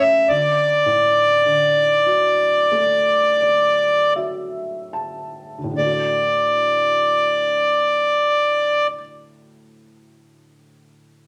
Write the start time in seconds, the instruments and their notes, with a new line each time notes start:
Already playing: felt piano F#2 C#3 A3 C#4
0.00 accordion E5
0.29 felt piano D2, accordion D5
0.86 felt piano A2
1.45 felt piano D3
2.06 felt piano F#3
2.72 felt piano A3
3.41 felt piano D5
4.16 felt piano F#3 E5
4.93 felt piano A5
5.58 felt piano D2
5.64 felt piano A2
5.71 felt piano D3
5.77 felt piano A3, accordion D5
5.84 felt piano F#4
5.91 felt piano D5